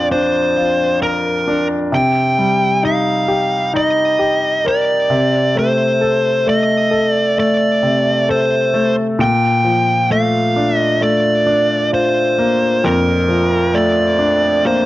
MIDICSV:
0, 0, Header, 1, 3, 480
1, 0, Start_track
1, 0, Key_signature, -2, "major"
1, 0, Tempo, 909091
1, 1016, Time_signature, 4, 2, 24, 8
1, 7844, End_track
2, 0, Start_track
2, 0, Title_t, "Lead electric guitar"
2, 0, Program_c, 0, 29
2, 62, Note_on_c, 0, 72, 66
2, 518, Note_off_c, 0, 72, 0
2, 542, Note_on_c, 0, 70, 65
2, 878, Note_off_c, 0, 70, 0
2, 1026, Note_on_c, 0, 79, 80
2, 1503, Note_off_c, 0, 79, 0
2, 1505, Note_on_c, 0, 77, 71
2, 1959, Note_off_c, 0, 77, 0
2, 1986, Note_on_c, 0, 75, 73
2, 2468, Note_off_c, 0, 75, 0
2, 2470, Note_on_c, 0, 74, 65
2, 2947, Note_off_c, 0, 74, 0
2, 2949, Note_on_c, 0, 72, 65
2, 3425, Note_off_c, 0, 72, 0
2, 3427, Note_on_c, 0, 75, 65
2, 3760, Note_off_c, 0, 75, 0
2, 3760, Note_on_c, 0, 74, 65
2, 3902, Note_off_c, 0, 74, 0
2, 3905, Note_on_c, 0, 74, 61
2, 4384, Note_off_c, 0, 74, 0
2, 4386, Note_on_c, 0, 72, 61
2, 4720, Note_off_c, 0, 72, 0
2, 4863, Note_on_c, 0, 79, 72
2, 5341, Note_off_c, 0, 79, 0
2, 5343, Note_on_c, 0, 77, 62
2, 5692, Note_off_c, 0, 77, 0
2, 5692, Note_on_c, 0, 75, 62
2, 5821, Note_on_c, 0, 74, 64
2, 5834, Note_off_c, 0, 75, 0
2, 6277, Note_off_c, 0, 74, 0
2, 6304, Note_on_c, 0, 72, 64
2, 6783, Note_on_c, 0, 70, 67
2, 6794, Note_off_c, 0, 72, 0
2, 7258, Note_on_c, 0, 74, 60
2, 7274, Note_off_c, 0, 70, 0
2, 7741, Note_off_c, 0, 74, 0
2, 7743, Note_on_c, 0, 72, 64
2, 7844, Note_off_c, 0, 72, 0
2, 7844, End_track
3, 0, Start_track
3, 0, Title_t, "Grand piano"
3, 0, Program_c, 1, 0
3, 0, Control_c, 1, 64, 127
3, 0, Note_on_c, 1, 41, 47
3, 0, Note_on_c, 1, 53, 40
3, 0, Note_on_c, 1, 62, 45
3, 0, Note_on_c, 1, 65, 45
3, 60, Note_off_c, 1, 62, 0
3, 60, Note_on_c, 1, 62, 44
3, 273, Note_off_c, 1, 53, 0
3, 293, Note_off_c, 1, 65, 0
3, 301, Note_on_c, 1, 65, 40
3, 542, Note_on_c, 1, 70, 44
3, 772, Note_off_c, 1, 62, 0
3, 780, Note_on_c, 1, 62, 45
3, 994, Note_off_c, 1, 41, 0
3, 997, Note_off_c, 1, 65, 0
3, 1005, Note_off_c, 1, 70, 0
3, 1011, Note_off_c, 1, 62, 0
3, 1014, Note_on_c, 1, 48, 52
3, 1022, Control_c, 1, 64, 0
3, 1099, Control_c, 1, 64, 127
3, 1259, Note_on_c, 1, 55, 43
3, 1495, Note_on_c, 1, 63, 48
3, 1733, Note_on_c, 1, 67, 44
3, 1965, Note_off_c, 1, 63, 0
3, 1973, Note_on_c, 1, 63, 46
3, 2196, Note_off_c, 1, 55, 0
3, 2205, Note_off_c, 1, 67, 0
3, 2213, Note_on_c, 1, 67, 46
3, 2454, Note_on_c, 1, 70, 42
3, 2673, Note_off_c, 1, 63, 0
3, 2674, Note_off_c, 1, 48, 0
3, 2680, Note_off_c, 1, 67, 0
3, 2688, Note_off_c, 1, 70, 0
3, 2692, Note_on_c, 1, 48, 54
3, 2704, Control_c, 1, 64, 0
3, 2794, Control_c, 1, 64, 127
3, 2932, Note_on_c, 1, 57, 41
3, 3175, Note_on_c, 1, 69, 42
3, 3406, Note_off_c, 1, 57, 0
3, 3414, Note_on_c, 1, 57, 44
3, 3641, Note_off_c, 1, 69, 0
3, 3649, Note_on_c, 1, 69, 42
3, 3888, Note_off_c, 1, 57, 0
3, 3896, Note_on_c, 1, 57, 46
3, 4124, Note_off_c, 1, 48, 0
3, 4132, Note_on_c, 1, 48, 40
3, 4369, Note_off_c, 1, 69, 0
3, 4377, Note_on_c, 1, 69, 40
3, 4606, Note_off_c, 1, 57, 0
3, 4614, Note_on_c, 1, 57, 53
3, 4833, Note_off_c, 1, 48, 0
3, 4842, Note_off_c, 1, 69, 0
3, 4848, Note_off_c, 1, 57, 0
3, 4852, Note_on_c, 1, 46, 52
3, 4863, Control_c, 1, 64, 0
3, 4966, Control_c, 1, 64, 127
3, 5092, Note_on_c, 1, 53, 39
3, 5335, Note_on_c, 1, 57, 46
3, 5577, Note_on_c, 1, 62, 40
3, 5806, Note_off_c, 1, 57, 0
3, 5814, Note_on_c, 1, 57, 44
3, 6033, Note_off_c, 1, 53, 0
3, 6046, Note_off_c, 1, 62, 0
3, 6054, Note_on_c, 1, 62, 43
3, 6295, Note_on_c, 1, 65, 41
3, 6539, Note_on_c, 1, 58, 45
3, 6753, Note_off_c, 1, 46, 0
3, 6754, Note_off_c, 1, 57, 0
3, 6780, Note_on_c, 1, 41, 50
3, 6994, Note_off_c, 1, 62, 0
3, 7015, Note_on_c, 1, 53, 39
3, 7234, Note_off_c, 1, 65, 0
3, 7254, Note_on_c, 1, 57, 46
3, 7476, Note_off_c, 1, 58, 0
3, 7491, Note_on_c, 1, 62, 43
3, 7735, Note_on_c, 1, 58, 46
3, 7844, Note_off_c, 1, 41, 0
3, 7844, Note_off_c, 1, 53, 0
3, 7844, Note_off_c, 1, 57, 0
3, 7844, Note_off_c, 1, 58, 0
3, 7844, Note_off_c, 1, 62, 0
3, 7844, End_track
0, 0, End_of_file